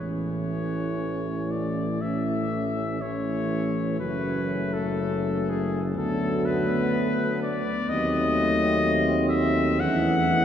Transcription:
Already playing: C#5
0.00 A1 E3 A3 C#4
1.51 D5
2.01 E3 A3 C#4 E5
3.01 E3 A3 C#4 C#5
3.99 F#1 F#3 A3 C#4 B4
4.73 A4
5.50 G#4
5.96 D2 F#3 A3 B3 A4
6.45 B4
7.42 D5
7.89 D#2 F#3 A3 C4 D#5
9.29 E5
9.80 E2 E3 A3 C#4 F#5

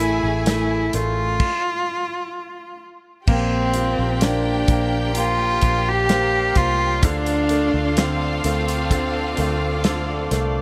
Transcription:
Already playing: A1 A3 E4 G#4 E5 G#5 C#6
0.00 A3 E4
0.23 A1
0.46 A3 E4 G#4, snare, closed hi-hat
0.93 A1 A3 C#4 F4, closed hi-hat
1.40 kick, crash
3.25 A#1 A#3 G4 A#4 D5 F5 G5 C6, kick, crash
3.29 C4
3.74 A#3 F4, closed hi-hat
3.99 A#1
4.21 A#3 D4 C5, snare, closed hi-hat
4.68 A#1 A#3 D4, kick, closed hi-hat
5.15 A#3 F4 C5, closed hi-hat
5.61 A#1 A#3 D4, kick, closed hi-hat
5.88 G4
6.09 A#3 C5, snare, closed hi-hat
6.55 C2 A#3 F4, kick, snare, closed hi-hat
7.02 D2 D3 D4 F4 A4 F5, kick, closed hi-hat
7.26 closed hi-hat
7.49 A3 D4, closed hi-hat
7.74 D2
7.97 D3 C4 A4, snare, closed hi-hat
8.44 D2 A3 C4, closed hi-hat
8.68 closed hi-hat
8.91 D3 A4, kick, closed hi-hat
9.37 D2 A3 C4, closed hi-hat
9.84 D3 A4, snare, closed hi-hat
10.31 C2 A3 D4, snare, closed hi-hat

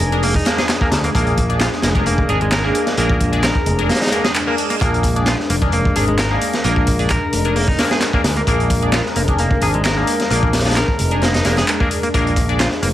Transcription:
Already playing: G#3 D4 G#4 A#4
0.00 F1, closed hi-hat
0.12 D4 G#4 A#4, closed hi-hat
0.23 A#3, closed hi-hat, open hi-hat
0.34 D#4, kick
0.45 A#3 D4 G#4 A#4, snare, closed hi-hat
0.58 G#4, snare, closed hi-hat
0.69 snare, clap, closed hi-hat
0.81 A#3 D4 G#4 A#4, kick
0.92 D2, snare, closed hi-hat
1.04 A#3, closed hi-hat
1.14 A#1 A#3 D4 G#4 A#4, kick, closed hi-hat
1.27 closed hi-hat
1.37 kick, closed hi-hat
1.49 D4 G#4 D5, closed hi-hat
1.60 F4, snare, clap, closed hi-hat
1.72 snare
1.82 F1 A#3, snare, closed hi-hat
1.95 D4 G#4 A#4, kick, closed hi-hat
2.06 A#3, closed hi-hat
2.18 kick
2.29 G#1 D4 G#4 A#4, closed hi-hat
2.41 G#3, closed hi-hat
2.52 A#4, snare, clap, closed hi-hat
2.64 A#3 D4 G#4 A#4
2.75 closed hi-hat
2.86 snare, closed hi-hat
2.97 A#1 A#3 D4 G#4 A#4, closed hi-hat
3.10 kick
3.20 kick, closed hi-hat
3.32 D4 G#4 D5, closed hi-hat
3.43 A#4, snare, clap, closed hi-hat
3.55 kick
3.66 F1, closed hi-hat
3.79 D4 G#4 A#4, closed hi-hat
3.89 A#3, snare, closed hi-hat, reverse cymbal
3.95 snare, closed hi-hat
4.01 D#4, snare, closed hi-hat
4.06 snare, closed hi-hat
4.12 A#3 D4 G#4 A#4, closed hi-hat
4.24 G#4, snare, closed hi-hat
4.35 clap, closed hi-hat
4.47 A#3 D4 G#4 A#4
4.58 closed hi-hat
4.70 A#3, closed hi-hat
4.81 A#1 A#3 D4 G#4 A#4, kick, closed hi-hat
4.94 closed hi-hat
5.03 kick, closed hi-hat, open hi-hat
5.16 D4 G#4 D5, closed hi-hat
5.26 F4, snare, clap, closed hi-hat
5.40 snare
5.50 F1 A#3, closed hi-hat, open hi-hat
5.62 D4 G#4 A#4, kick, closed hi-hat
5.72 A#3, closed hi-hat
5.85 kick
5.96 G#1 D4 G#4 A#4, closed hi-hat, open hi-hat
6.08 G#3, closed hi-hat
6.19 A#4, snare, clap, closed hi-hat
6.30 A#3 D4 G#4 A#4
6.41 closed hi-hat, open hi-hat
6.53 snare, closed hi-hat
6.64 A#1 A#3 D4 G#4 A#4, closed hi-hat
6.76 kick
6.87 kick, closed hi-hat, open hi-hat
6.99 D4 G#4 D5, closed hi-hat
7.10 A#4, kick, clap, closed hi-hat
7.33 F1, closed hi-hat, open hi-hat
7.45 D4 G#4 A#4, closed hi-hat
7.56 A#3, closed hi-hat, open hi-hat
7.68 D#4, kick
7.79 A#3 D4 G#4 A#4, snare, closed hi-hat, open hi-hat
7.91 G#4, snare, closed hi-hat
8.00 snare, clap, closed hi-hat
8.13 A#3 D4 G#4 A#4, kick
8.24 D2, snare, closed hi-hat, open hi-hat
8.36 A#3, closed hi-hat
8.47 A#1 A#3 D4 G#4 A#4, kick, closed hi-hat
8.60 closed hi-hat
8.70 kick, closed hi-hat, open hi-hat
8.82 D4 G#4 D5, closed hi-hat
8.92 F4, snare, clap, closed hi-hat
9.05 snare
9.16 F1 A#3, closed hi-hat, open hi-hat
9.28 D4 G#4 A#4, kick, closed hi-hat
9.38 A#3, closed hi-hat
9.51 kick
9.61 G#1 D4 G#4 A#4, closed hi-hat, open hi-hat
9.74 G#3, closed hi-hat
9.85 A#4, snare, clap, closed hi-hat
9.97 A#3 D4 G#4 A#4
10.07 closed hi-hat, open hi-hat
10.20 snare, closed hi-hat
10.30 A#1 A#3 D4 G#4 A#4, closed hi-hat
10.43 kick
10.53 snare, closed hi-hat, open hi-hat
10.60 snare, closed hi-hat
10.65 D4 G#4 D5, snare, closed hi-hat
10.71 snare, closed hi-hat
10.76 A#4, snare, clap, closed hi-hat
10.88 kick
10.99 F1, closed hi-hat, open hi-hat
11.11 D4 G#4 A#4, closed hi-hat
11.22 A#3, snare, closed hi-hat
11.34 D#4, snare, closed hi-hat
11.45 F1 A#3 D4 G#4 A#4, snare, closed hi-hat, open hi-hat
11.57 G#4, snare, closed hi-hat
11.68 clap, closed hi-hat
11.80 A#3 D4 G#4 A#4, kick
11.91 closed hi-hat, open hi-hat
12.03 A#3, closed hi-hat
12.14 A#1 A#3 D4 F4 G#4 A#4, kick, closed hi-hat
12.27 closed hi-hat
12.36 kick, closed hi-hat, open hi-hat
12.49 D4 G#4 D5, closed hi-hat
12.59 F4, snare, clap, closed hi-hat
12.71 snare
12.82 F1 A#3, closed hi-hat, open hi-hat

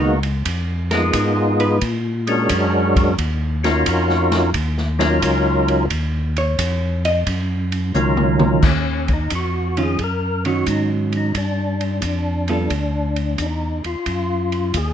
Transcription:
Already playing: C#2 D#3 G#3 A#3 B3 D#4 F#4
0.23 ride
0.45 F2, kick, ride
0.91 G#3 B3 D#4 F4 G#4 A#4, snare, ride
1.13 G#2, kick, hi-hat pedal, ride
1.60 B4, ride
1.81 A#2, kick, ride
2.27 G#3 C#4 D4 F#4 A#4, ride
2.49 F#2, kick, hi-hat pedal, ride
2.96 kick, ride
3.18 D#2, kick, ride
3.64 C#4 D#4 F4 F#4 A#4, snare, ride
3.86 F2, kick, hi-hat pedal, ride
4.09 snare
4.32 snare, ride
4.54 D#2, kick, ride
4.78 snare
4.99 F#3 C#4 D#4 F4 A#4, snare, ride
5.22 C#2, kick, hi-hat pedal, ride
5.68 ride
5.90 D#2, kick, ride
6.36 C#5, ride
6.59 F2, kick, hi-hat pedal, ride
7.05 D#5, ride
7.27 F#2, kick, ride
7.72 ride
7.94 C#2 F#3 C#4 D#4 F4 A#4, hi-hat pedal, mid tom
8.17 mid tom
8.40 mid tom
8.62 D#2, kick, snare, crash
8.67 C#4
9.08 kick, ride
9.13 D#4
9.30 F2, kick, hi-hat pedal, ride
9.35 F#4
9.77 D#3 C#4 F4, ride
9.83 G#4
9.99 F#2, kick, ride
10.04 A#4
10.45 D#3 F#3 C#4 F#4, ride
10.66 G#2 D#4, kick, hi-hat pedal, ride
11.12 ride
11.17 D#4
11.35 G2 D4, kick, ride
11.81 ride
12.02 F2, kick, hi-hat pedal, ride
12.48 G3 B3 F4 A4, ride
12.70 D2, kick, ride
13.16 ride
13.38 E2 D#4, kick, hi-hat pedal, ride
13.84 E2 F4, ride
14.06 F#2, kick, ride
14.52 ride
14.74 D#2 G#4, kick, hi-hat pedal, ride

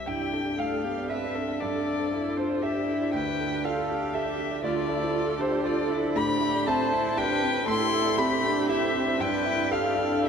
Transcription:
0.06 G2 E4 G4 G5
0.21 D5
0.32 D4 A4
0.45 G4
0.58 A3 A4 D5 F5
0.72 A4
0.84 B3 D4 G4
0.98 D5
1.09 C4 A4 B4 E5
1.24 D5
1.35 D4 A4
1.48 D5
1.60 G2 D4 A4 D5
1.75 A4
1.87 D5
2.00 C5
2.12 E4 D5
2.25 A4
2.37 D4 F4 C5
2.50 D5
2.62 G4 A4 E5
2.74 D5
2.87 D4 E4
3.01 D5
3.12 D2 D4 B4 G5
3.26 D5
3.39 A4
3.52 G4
3.64 F4 A4 D5 F5
3.77 A4
3.89 D4 G4
4.01 D5
4.13 G4 A4 E5
4.26 D5
4.38 D4
4.51 D5
4.63 D2 F4 D5
4.76 A4
4.89 E4 A4 D5
5.01 C5
5.14 F4 D5
5.26 A4
5.39 D4 G4 C5
5.52 D5
5.64 F4 A4 D5
5.76 D5
5.89 D4 E4
6.03 D5
6.15 A2 D4 G4 B5
6.27 C5
6.41 G4 E5
6.55 D5
6.66 C4 C5 E5 A5
6.80 C5
6.92 E4
7.05 C5
7.17 D4 G4 B4 G5
7.29 C5
7.42 C4 E4
7.55 C5
7.67 A2 E4 A4 C6
7.80 G4
7.92 A4 E5
8.05 D5
8.18 C4 G4 E5 B5
8.29 C5
8.42 D4 E4
8.56 C5
8.68 E4 G4 E5
8.82 C5
8.94 C4 E4
9.06 C5
9.19 G2 D4 B4 G5
9.32 D5
9.45 E4 E5
9.58 D5
9.71 G4 A4 E5 F5
9.84 D5
9.97 D4 E4
10.10 D5
10.23 G4 E5

